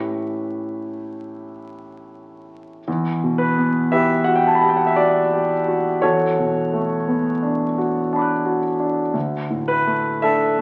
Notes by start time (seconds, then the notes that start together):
Already playing: A2 C#4 E4 G4 B4
2.88 E2
3.24 B2
3.38 B4
3.58 B3
3.92 E4 G4 B4 E5
4.24 F#4 F#5
4.36 G5
4.47 A5
4.55 B5
4.62 G4 A5
4.69 G5
4.77 F#5
4.87 E5
4.96 F#4 D5
5.33 G4
5.68 F#4
6.02 E2 F#4 A4 C#5
6.38 B2
6.73 A3
7.08 B3
7.43 D4
7.78 F#4
8.13 D4 A5 B5
8.19 D6 F#6
8.46 F#4
8.80 D4
9.13 D2
9.50 A2
9.68 B4
9.87 A3
10.22 D4 A4 E5